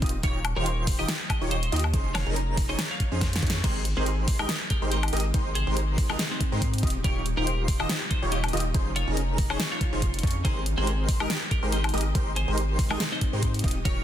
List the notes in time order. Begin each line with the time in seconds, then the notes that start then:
Already playing: C4 D#4
0.02 D#1 D#3 D#4 F4 G4 D#5 D#6, kick, closed hi-hat
0.06 closed hi-hat
0.09 closed hi-hat
0.23 D#1 D#3 D#4 F4 G4 A#4 C#5 C#6, kick, closed hi-hat
0.45 closed hi-hat, high woodblock
0.56 D#1 D#3 D#4 F4 G4 A#4 C5 C#5 C6
0.66 closed hi-hat
0.87 kick, open hi-hat
0.99 D#1 D#3 D#4 F4 G4 D#5 D#6
1.09 snare, closed hi-hat
1.30 G4 D#5, kick, closed hi-hat, high woodblock
1.41 D#1 D#3 D#4 F4 G4 C#5 C#6
1.51 D#4 C5, closed hi-hat
1.63 closed hi-hat
1.72 D#2 D#3 D#4 F4 G4 D#5 D#6, closed hi-hat
1.76 closed hi-hat
1.79 closed hi-hat
1.84 high woodblock
1.94 F1 F3 C#4 D#4 G#4 C5 C6, kick, closed hi-hat
2.15 C#5 F5, snare, closed hi-hat, high woodblock
2.27 F1 F3 C#4 D#4 G#4 A#4 A#5
2.36 closed hi-hat
2.57 kick, open hi-hat
2.69 F1 F3 C#4 D#4 G#4 C5 C#5 D#5 C#6
2.79 snare, closed hi-hat
2.90 C#5 F5
3.00 kick, closed hi-hat
3.12 F2 F3 C#4 D#4 G#4 C5 C6
3.21 kick, snare, closed hi-hat
3.33 snare, closed hi-hat
3.42 F2 F3 C#4 D#4 G#4 C#5 C#6, kick, closed hi-hat
3.47 snare, closed hi-hat
3.50 closed hi-hat
3.64 G#1 C3 G#3 C4 D#4 G4 G#4 A#4 C5 C6, kick, closed hi-hat, crash
3.85 closed hi-hat
3.97 G#1 G#3 C4 D#4 G4 G#4 A#4 C5 C6
4.06 closed hi-hat
4.28 kick, open hi-hat
4.39 G#1 G#3 D#4 G4 A#4 D#5 D#6, high woodblock
4.49 snare, closed hi-hat
4.70 G4 A#4, kick, closed hi-hat
4.82 G#1 G#3 D#4 G4 A#4 C5 C6
4.91 D#4 G4, closed hi-hat
5.03 closed hi-hat, high woodblock
5.08 closed hi-hat
5.13 G#1 G#3 D#4 G4 A#4 D#5 D#6, closed hi-hat
5.17 closed hi-hat
5.20 closed hi-hat
5.34 G#1 G#3 D#4 G4 A#4 C5 C6, kick, closed hi-hat
5.55 G#4 C5, closed hi-hat
5.67 G#1 G#3 D#4 G4 A#4 C5 C6
5.77 closed hi-hat
5.98 kick, open hi-hat
6.09 G#1 G#3 D#4 F4 G4 A#4 D#5 D#6, high woodblock
6.19 snare, closed hi-hat
6.31 C4 D#4
6.40 kick, closed hi-hat
6.52 G#2 G#3 D#4 G4 A#4 C5 C6
6.62 kick, closed hi-hat
6.74 closed hi-hat
6.78 closed hi-hat
6.83 D#1 C#3 D#3 A#3 D#4 F4 G4 D#5 D#6, kick, closed hi-hat
6.87 closed hi-hat
6.90 closed hi-hat
7.04 D#1 D#3 D#4 F4 G4 A#4 C#5 C#6, kick, closed hi-hat
7.26 closed hi-hat
7.37 D#1 D#3 D#4 F4 G4 A#4 C5 C6
7.47 closed hi-hat
7.68 kick, open hi-hat
7.80 D#1 D#3 D#4 F4 G4 C5 D#5 D#6, high woodblock
7.89 snare, closed hi-hat
8.10 D#4 C5, kick, closed hi-hat
8.22 D#1 D#3 D#4 F4 G4 C#5 C#6
8.32 D#4 G4, closed hi-hat
8.44 closed hi-hat, high woodblock
8.48 closed hi-hat
8.53 D#1 D#3 D#4 F4 G4 D#5 D#6, closed hi-hat
8.57 closed hi-hat
8.60 closed hi-hat
8.74 F1 F3 C#4 D#4 F4 G#4 C5 C6, kick, closed hi-hat
8.96 F4 C#5, closed hi-hat
9.07 F1 F3 C#4 D#4 G#4 A#4 A#5
9.17 closed hi-hat
9.38 kick, open hi-hat
9.50 F1 F3 C#4 D#4 G#4 C5 C#5 C#6, high woodblock
9.60 snare, closed hi-hat
9.71 F4 C#5
9.81 kick, closed hi-hat
9.92 F1 F3 C#4 D#4 G#4 C5 C6
10.02 kick, closed hi-hat
10.14 closed hi-hat
10.19 closed hi-hat
10.23 F2 F3 C#4 D#4 G#4 C#5 C#6, kick, closed hi-hat
10.27 closed hi-hat
10.31 closed hi-hat
10.45 G#1 C3 G#3 C4 D#4 G4 G#4 A#4 C5 C6, kick, closed hi-hat
10.66 closed hi-hat
10.78 G#1 G#3 C4 D#4 G4 G#4 A#4 C5 C6
10.87 closed hi-hat
11.09 kick, open hi-hat
11.20 G#1 G#3 D#4 G4 A#4 D#5 D#6, high woodblock
11.30 snare, closed hi-hat
11.51 G4 A#4, kick, closed hi-hat
11.63 G#1 G#3 D#4 G4 A#4 C5 C6
11.72 D#4 G4, closed hi-hat
11.84 closed hi-hat, high woodblock
11.89 closed hi-hat
11.94 G#1 G#3 D#4 G4 A#4 D#5 D#6, closed hi-hat
11.98 closed hi-hat
12.01 closed hi-hat
12.15 G#1 G#3 D#4 G4 A#4 C5 C6, kick, closed hi-hat
12.36 G#4 C5, closed hi-hat
12.48 G#1 G#3 D#4 G4 A#4 C5 C6
12.58 closed hi-hat
12.79 kick, open hi-hat
12.90 G#1 G#3 D#4 F4 G4 A#4 D#5 D#6, high woodblock
13.00 snare, closed hi-hat
13.12 C4 D#4
13.21 kick, closed hi-hat
13.33 G#2 G#3 D#4 G4 A#4 C5 C6
13.43 kick, closed hi-hat
13.54 closed hi-hat
13.59 closed hi-hat
13.64 D#1 C#3 D#3 A#3 D#4 F4 G4 D#5 D#6, kick, closed hi-hat
13.68 closed hi-hat
13.71 closed hi-hat
13.85 D#1 D#3 D#4 F4 G4 A#4 C#5 C#6, kick, closed hi-hat